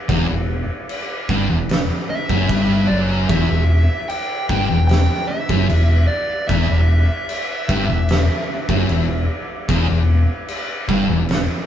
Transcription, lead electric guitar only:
2.10 E5
2.87 D5
3.29 E5
4.08 G5
4.88 G5
5.27 E5
6.07 D5
6.48 E5

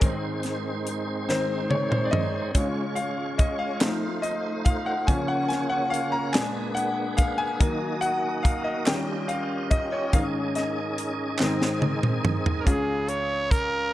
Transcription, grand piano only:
Already playing: G#4
0.01 G#2 D#3 C4
1.29 G#2 D#3 C4 C5
1.70 C#5
1.91 C5
2.05 D5
2.11 D#5
2.54 C#3 G#3 F4 C#5
2.95 F5
3.38 D#5
3.59 F5
3.81 F3 A3 D#4
4.22 D#5
4.65 F5
4.86 F#5
5.07 C#3 F3 C#4 G#5
5.28 F#5
5.48 G#5
5.70 F#5
5.90 F5
6.12 A#5
6.33 A#2 G#3 D4 G#5
6.75 F#5
7.17 F5
7.38 G#5
7.60 D#3 F#3 A#3
8.01 F#5
8.43 F5
8.64 D#5
8.86 D#3 G3 C#4 G5
9.28 F5
9.71 D#5
9.92 C#5
10.13 G#2 D#3 C#4 F5
10.56 D#5
11.39 G#2 D#3 C4
12.64 C#2 C#3 C#4 F4
12.70 G#4

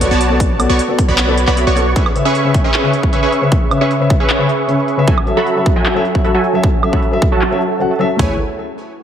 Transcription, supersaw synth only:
0.01 B3 F#4 C#5 D5 C#6
0.11 B3 F#4 C#5 D5 A5
0.69 B3 F#4 C#5 D5 C#6
1.08 B3 F#4 C#5 D5 B5
1.47 B3 F#4 C#5 D5 B5
1.67 B3 F#4 C#5 D5 C#6
1.96 C#4 G#4 B4 E5 C#6
2.25 C#4 G#4 B4 E5 C#6
2.64 C#4 G#4 B4 E5 C#6
3.13 C#4 G#4 B4 E5 C#6
3.23 C#4 G#4 B4 E5 C#6
3.81 C#4 G#4 B4 E5 C#6
4.20 C#4 G#4 B4 E5 C#6
5.08 F#3 F#4 A4 E5 G#5
5.37 F#3 F#4 A4 E5 B5
5.76 F#3 F#4 A4 E5 G#5
6.25 F#3 F#4 A4 E5 B5
6.35 F#3 F#4 A4 E5 G#5
6.93 F#3 F#4 A4 E5 B5
7.32 F#3 F#4 A4 E5 A5
8.19 A3 E4 B4 C#5 G#5

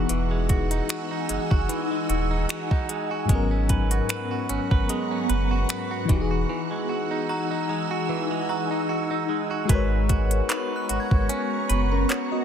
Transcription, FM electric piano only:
Already playing: E3 D#4 F#4 G#4
3.25 G#2 F#3
3.30 B3 C#4
3.35 A#4
6.05 E3 D#4
6.12 F#4 G4
6.21 G#4
9.65 G#3 F#4
9.70 A#4 B4
9.75 C#5
11.92 C#4 A#4
12.10 C#5
12.32 F#4 D#5

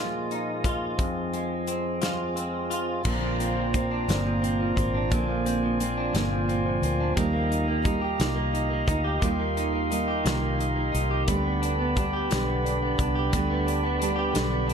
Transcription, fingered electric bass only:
3.05 A#1
4.08 G1
4.77 G#1
5.12 A#1
6.14 G1
6.82 D2
7.17 D#2
8.20 C2
8.88 D2
9.22 D#2
10.25 C2
10.94 C2
11.28 D2
12.32 B1
12.99 C2
13.33 D2
14.36 B1

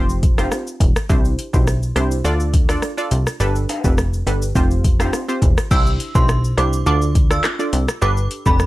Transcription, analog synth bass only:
Already playing: F1
0.80 E1
1.10 C2
1.54 B1
1.96 C2
2.25 D2
3.11 C2
3.40 G1
3.84 F1
4.27 G1
4.55 F1
5.42 E1
5.71 C2
6.15 B1
6.58 C2
6.86 D2
7.73 C2
8.02 G1
8.46 F1

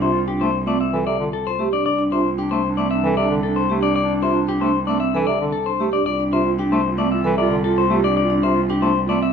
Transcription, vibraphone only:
0.01 F4
0.27 D4
0.67 C4
0.93 A4
1.59 G4
1.73 D4
1.98 D4
2.12 F4
2.38 D4
2.78 C4
3.04 A4
3.70 G4
3.83 D4
4.09 D4
4.22 F4
4.48 D4
4.88 C4
5.14 A4
5.80 G4
5.93 D4
6.19 D4
6.32 F4
6.58 D4
6.98 C4
7.24 A4
7.64 F4
7.90 G4
8.04 D4
8.30 D4
8.43 F4
8.70 D4
9.09 C4

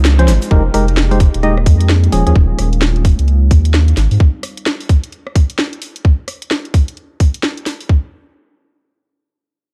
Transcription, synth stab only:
0.19 F3 C#4 C5
0.51 G#3 D#4 G4 A#4
0.74 G#3 D#4 G4 A#4
1.11 G#3 D#4 G4 C5
1.43 G#3 D#4 G4 D#5
2.12 F3 C#4 G#4
2.27 F3 C#4 G#4

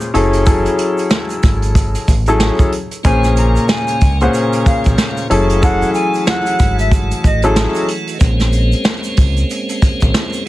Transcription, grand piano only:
0.14 F#3 C#4 E4 G#4 A4
0.46 F#3 C#4 E4 G#4 A4
2.28 F#3 C#4 E4 G#4 A4
3.05 A#2 A#3 C#4 G#4 C5
4.21 A#2 A#3 C#4 G#4 C5
5.30 F#3 C#4 E4 G#4 A4
5.62 F#3 C#4 E4 G#4 A4
7.44 F#3 C#4 E4 G#4 A4

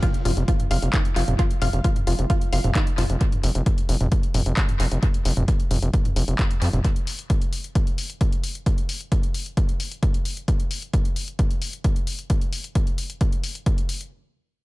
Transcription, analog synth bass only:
0.25 F1
0.37 F1
0.71 F1
0.82 F1
1.16 F1
1.28 F1
1.62 F1
1.73 F1
2.07 F1
2.19 F1
2.53 F1
2.64 F1
2.98 F1
3.10 F1
3.44 F1
3.55 F1
3.89 F1
4.01 F1
4.34 F1
4.46 F1
4.80 F1
4.92 F1
5.25 F1
5.37 F1
5.71 F1
5.82 F1
6.16 F1
6.28 F1
6.62 F2
6.73 F1

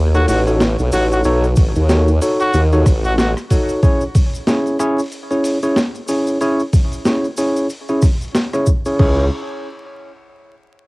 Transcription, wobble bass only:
Already playing: D#2
0.28 A1
0.79 B1
0.93 A1
1.25 B1
1.57 A1
1.76 D#2
2.54 D#2
2.86 A1
8.99 C#2

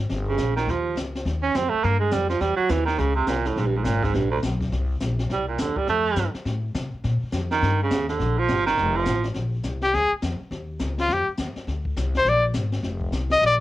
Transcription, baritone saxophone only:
0.28 C#3
0.56 D#3
0.70 F3
1.43 C#4
1.56 C4
1.70 A3
1.84 A#3
2.00 G#3
2.12 G3
2.29 F3
2.41 G3
2.56 F#3
2.70 E3
2.86 D#3
2.99 C#3
3.16 C3
3.29 A#2
3.47 A2
3.60 G#2
3.66 G2
3.77 G#2
3.84 A#2
4.04 G#2
4.15 G2
4.31 D2
5.33 G3
5.48 A#2
5.60 D3
5.77 G3
5.89 A3
7.52 D#3
7.83 C#3
8.09 D3
8.39 F3
8.67 D#3
8.96 F3

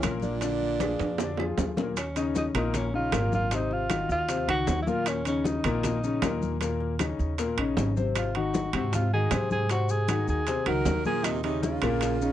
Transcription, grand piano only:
0.03 A#2 A#3 A#4
0.42 D3 D4 D5
0.80 F3 F4 G#4
1.19 D3 D4 D5
1.39 F3 F4 G#4
1.77 A#2 A#3 A#4
2.16 C#3 C#4 D#4
2.55 A#2 A#3 A#4
2.94 C#3 C#4 D#4
3.12 A#2 A#3 A#4
3.52 C3 C4 C5
3.89 D#3 D#4 F#4
4.29 C3 C4 C5
4.48 D#3 D#4 F#4
4.87 A#2 A#3 A#4
5.26 C#3 C#4 D#4
5.65 A#2 A#3 A#4
6.04 C#3 C#4 D#4
6.23 A#2 A#3 A#4
6.62 A#2 A#3 A#4
7.00 C#3 C#4 D#4
7.39 A#2 A#3 A#4
7.59 C#3 C#4 D#4
7.96 C3 C4 C5
8.36 D#3 D#4 F#4
8.74 C3 C4 C5
9.13 D#3 D#4 F#4
9.32 C3 C4 C5
9.71 C3 C4 C5
10.09 D#3 D#4 F#4
10.47 C3 C4 C5
10.67 D#3 D#4 F#4
11.05 A#2 A#3 A#4
11.44 C#3 C#4 D#4
11.83 A#2 A#3 A#4
12.22 C#3 C#4 D#4

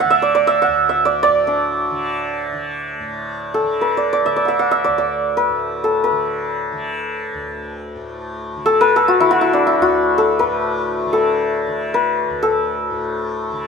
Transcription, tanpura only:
Already playing: D2 A2 D3
0.04 D3
0.67 D2
1.28 A2
1.90 D3
2.52 D3
3.00 A2
3.62 D3
4.25 D3
4.87 D2
5.49 A2
6.11 D3
6.72 D3
7.34 D2
7.96 A2
8.56 D3
9.19 D3
9.80 D2
10.42 A2
11.04 D3
11.67 D3
12.29 D2
12.91 A2
13.52 D3

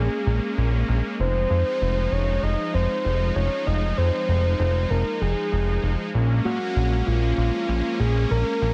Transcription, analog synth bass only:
0.27 A#1
0.58 A#1
0.89 A#1
1.19 F1
1.50 F2
1.81 F1
2.12 F1
2.43 F1
2.74 F1
3.05 F1
3.36 F1
3.67 F1
3.98 F2
4.29 F1
4.60 F1
4.90 F1
5.21 F1
5.52 F1
5.83 F1
6.14 A#1
6.45 A#2
6.76 A#1
7.07 A#1
7.38 A#1
7.69 A#1
8.00 A#1
8.31 A#1
8.62 A#1

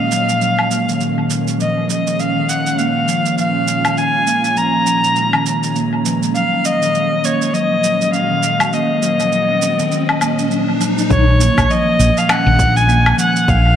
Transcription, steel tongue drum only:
Already playing: A#3
0.12 F#3
0.30 F3
0.42 F#3
0.71 A#3
0.88 D#3
1.01 D#3
1.18 D#3
1.30 D#3
1.59 F3
1.77 F3
1.89 F3
2.07 F3
2.19 C#4
2.36 D#3
2.49 D#3
2.79 A#3
3.08 F3
3.26 F3
3.38 F3
3.56 F3
3.68 C#4
3.85 D#3
3.97 D#3
4.27 A#3
4.57 F3
4.74 F3
4.87 F3
5.04 F3
5.16 C#4
5.34 D#3
5.46 D#3
5.76 A#3
6.05 F3
6.22 F3
6.34 F#3
6.52 F#3
6.64 C#4
6.82 D#3
6.94 D#3
7.24 A#3
7.54 F#3
7.71 F3
7.83 F#3
8.01 F#3
8.13 C#4
8.31 D#3
8.43 D#3
8.73 A#3
9.02 F#3
9.20 F3
9.32 F#3
9.50 F#3
9.62 C#4
9.79 D#3
9.92 D#3
10.22 A#3
10.51 F#3
10.68 F3
10.80 F#3
10.98 F#3
11.10 D#3
11.40 A#3
11.69 F3
11.87 F3
11.99 F3
12.16 F3
12.29 C#4
12.46 D#3
12.58 D#3
12.88 A#3
13.18 F3
13.35 F3
13.47 F3
13.65 F3

